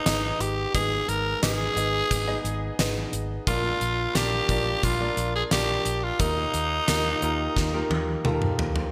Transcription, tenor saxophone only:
0, 0, Header, 1, 2, 480
1, 0, Start_track
1, 0, Key_signature, -3, "major"
1, 0, Tempo, 681818
1, 524, Time_signature, 4, 2, 24, 8
1, 6278, End_track
2, 0, Start_track
2, 0, Title_t, "Tenor saxophone"
2, 0, Program_c, 0, 66
2, 0, Note_on_c, 0, 63, 102
2, 289, Note_on_c, 0, 67, 97
2, 299, Note_off_c, 0, 63, 0
2, 523, Note_off_c, 0, 67, 0
2, 527, Note_on_c, 0, 68, 120
2, 766, Note_on_c, 0, 70, 110
2, 777, Note_off_c, 0, 68, 0
2, 1005, Note_off_c, 0, 70, 0
2, 1009, Note_on_c, 0, 68, 116
2, 2178, Note_off_c, 0, 68, 0
2, 2447, Note_on_c, 0, 65, 115
2, 2924, Note_on_c, 0, 67, 118
2, 2935, Note_off_c, 0, 65, 0
2, 3406, Note_on_c, 0, 65, 109
2, 3416, Note_off_c, 0, 67, 0
2, 3765, Note_off_c, 0, 65, 0
2, 3770, Note_on_c, 0, 68, 101
2, 3823, Note_off_c, 0, 68, 0
2, 3888, Note_on_c, 0, 67, 107
2, 4248, Note_on_c, 0, 65, 100
2, 4259, Note_off_c, 0, 67, 0
2, 4366, Note_on_c, 0, 63, 111
2, 4376, Note_off_c, 0, 65, 0
2, 6045, Note_off_c, 0, 63, 0
2, 6278, End_track
0, 0, End_of_file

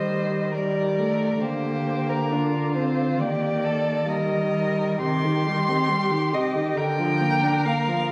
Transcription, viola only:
0, 0, Header, 1, 2, 480
1, 0, Start_track
1, 0, Tempo, 884956
1, 773, Time_signature, 4, 2, 24, 8
1, 2217, Tempo, 934579
1, 2697, Tempo, 878477
1, 4388, End_track
2, 0, Start_track
2, 0, Title_t, "Viola"
2, 0, Program_c, 0, 41
2, 0, Note_on_c, 0, 55, 39
2, 294, Note_off_c, 0, 55, 0
2, 298, Note_on_c, 0, 55, 43
2, 532, Note_on_c, 0, 57, 50
2, 540, Note_off_c, 0, 55, 0
2, 774, Note_on_c, 0, 58, 46
2, 782, Note_off_c, 0, 57, 0
2, 1257, Note_on_c, 0, 62, 47
2, 1265, Note_off_c, 0, 58, 0
2, 1494, Note_on_c, 0, 60, 53
2, 1502, Note_off_c, 0, 62, 0
2, 1737, Note_on_c, 0, 58, 45
2, 1745, Note_off_c, 0, 60, 0
2, 2216, Note_off_c, 0, 58, 0
2, 2219, Note_on_c, 0, 55, 44
2, 2689, Note_off_c, 0, 55, 0
2, 2691, Note_on_c, 0, 48, 55
2, 2820, Note_on_c, 0, 51, 49
2, 2828, Note_off_c, 0, 48, 0
2, 2942, Note_on_c, 0, 55, 50
2, 2950, Note_off_c, 0, 51, 0
2, 3058, Note_on_c, 0, 60, 45
2, 3066, Note_off_c, 0, 55, 0
2, 3172, Note_on_c, 0, 55, 49
2, 3180, Note_off_c, 0, 60, 0
2, 3292, Note_on_c, 0, 51, 50
2, 3301, Note_off_c, 0, 55, 0
2, 3412, Note_on_c, 0, 48, 49
2, 3420, Note_off_c, 0, 51, 0
2, 3532, Note_on_c, 0, 51, 47
2, 3541, Note_off_c, 0, 48, 0
2, 3650, Note_off_c, 0, 51, 0
2, 3653, Note_on_c, 0, 50, 51
2, 3772, Note_on_c, 0, 53, 51
2, 3780, Note_off_c, 0, 50, 0
2, 3892, Note_on_c, 0, 58, 49
2, 3900, Note_off_c, 0, 53, 0
2, 4014, Note_on_c, 0, 62, 48
2, 4022, Note_off_c, 0, 58, 0
2, 4134, Note_on_c, 0, 58, 46
2, 4142, Note_off_c, 0, 62, 0
2, 4257, Note_on_c, 0, 53, 48
2, 4265, Note_off_c, 0, 58, 0
2, 4384, Note_off_c, 0, 53, 0
2, 4388, End_track
0, 0, End_of_file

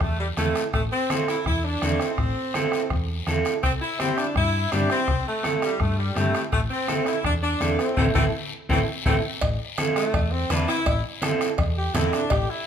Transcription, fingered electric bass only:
0, 0, Header, 1, 2, 480
1, 0, Start_track
1, 0, Key_signature, 0, "minor"
1, 0, Tempo, 361446
1, 981, Time_signature, 4, 2, 24, 8
1, 16822, End_track
2, 0, Start_track
2, 0, Title_t, "Fingered electric bass"
2, 0, Program_c, 0, 33
2, 14, Note_on_c, 0, 40, 86
2, 401, Note_off_c, 0, 40, 0
2, 494, Note_on_c, 0, 40, 88
2, 689, Note_off_c, 0, 40, 0
2, 978, Note_on_c, 0, 33, 97
2, 1171, Note_off_c, 0, 33, 0
2, 1937, Note_on_c, 0, 40, 88
2, 2323, Note_off_c, 0, 40, 0
2, 2423, Note_on_c, 0, 40, 82
2, 2615, Note_off_c, 0, 40, 0
2, 2901, Note_on_c, 0, 33, 94
2, 3094, Note_off_c, 0, 33, 0
2, 3859, Note_on_c, 0, 40, 84
2, 4246, Note_off_c, 0, 40, 0
2, 4341, Note_on_c, 0, 40, 85
2, 4535, Note_off_c, 0, 40, 0
2, 4827, Note_on_c, 0, 36, 100
2, 5019, Note_off_c, 0, 36, 0
2, 5784, Note_on_c, 0, 43, 90
2, 6170, Note_off_c, 0, 43, 0
2, 6281, Note_on_c, 0, 43, 87
2, 6468, Note_off_c, 0, 43, 0
2, 6745, Note_on_c, 0, 36, 96
2, 6939, Note_off_c, 0, 36, 0
2, 7701, Note_on_c, 0, 43, 85
2, 8089, Note_off_c, 0, 43, 0
2, 8183, Note_on_c, 0, 43, 85
2, 8378, Note_off_c, 0, 43, 0
2, 8668, Note_on_c, 0, 33, 100
2, 8861, Note_off_c, 0, 33, 0
2, 9621, Note_on_c, 0, 40, 93
2, 10009, Note_off_c, 0, 40, 0
2, 10115, Note_on_c, 0, 40, 89
2, 10306, Note_off_c, 0, 40, 0
2, 10587, Note_on_c, 0, 33, 88
2, 10768, Note_off_c, 0, 33, 0
2, 10828, Note_on_c, 0, 33, 82
2, 11008, Note_off_c, 0, 33, 0
2, 11544, Note_on_c, 0, 33, 94
2, 11726, Note_off_c, 0, 33, 0
2, 12029, Note_on_c, 0, 33, 96
2, 12209, Note_off_c, 0, 33, 0
2, 12505, Note_on_c, 0, 33, 94
2, 12700, Note_off_c, 0, 33, 0
2, 13466, Note_on_c, 0, 40, 91
2, 13852, Note_off_c, 0, 40, 0
2, 13944, Note_on_c, 0, 40, 88
2, 14138, Note_off_c, 0, 40, 0
2, 14423, Note_on_c, 0, 33, 101
2, 14617, Note_off_c, 0, 33, 0
2, 15389, Note_on_c, 0, 40, 97
2, 15772, Note_off_c, 0, 40, 0
2, 15862, Note_on_c, 0, 40, 95
2, 16056, Note_off_c, 0, 40, 0
2, 16347, Note_on_c, 0, 33, 108
2, 16538, Note_off_c, 0, 33, 0
2, 16822, End_track
0, 0, End_of_file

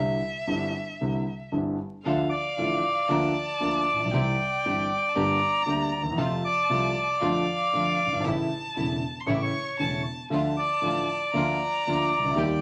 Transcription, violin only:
0, 0, Header, 1, 2, 480
1, 0, Start_track
1, 0, Key_signature, -1, "minor"
1, 0, Tempo, 516796
1, 1903, Time_signature, 4, 2, 24, 8
1, 11716, End_track
2, 0, Start_track
2, 0, Title_t, "Violin"
2, 0, Program_c, 0, 40
2, 0, Note_on_c, 0, 76, 83
2, 1419, Note_off_c, 0, 76, 0
2, 1897, Note_on_c, 0, 77, 82
2, 2863, Note_on_c, 0, 81, 102
2, 2877, Note_off_c, 0, 77, 0
2, 3819, Note_on_c, 0, 79, 93
2, 3833, Note_off_c, 0, 81, 0
2, 4725, Note_on_c, 0, 81, 68
2, 4739, Note_off_c, 0, 79, 0
2, 4777, Note_on_c, 0, 82, 111
2, 4791, Note_off_c, 0, 81, 0
2, 5741, Note_on_c, 0, 81, 99
2, 5755, Note_off_c, 0, 82, 0
2, 6683, Note_off_c, 0, 81, 0
2, 6689, Note_on_c, 0, 77, 101
2, 7655, Note_on_c, 0, 81, 108
2, 7669, Note_off_c, 0, 77, 0
2, 8547, Note_on_c, 0, 84, 71
2, 8561, Note_off_c, 0, 81, 0
2, 8613, Note_on_c, 0, 85, 117
2, 8627, Note_off_c, 0, 84, 0
2, 9095, Note_off_c, 0, 85, 0
2, 9099, Note_on_c, 0, 81, 91
2, 9545, Note_off_c, 0, 81, 0
2, 9578, Note_on_c, 0, 81, 99
2, 10498, Note_off_c, 0, 81, 0
2, 10532, Note_on_c, 0, 82, 105
2, 11490, Note_on_c, 0, 79, 99
2, 11504, Note_off_c, 0, 82, 0
2, 11716, Note_off_c, 0, 79, 0
2, 11716, End_track
0, 0, End_of_file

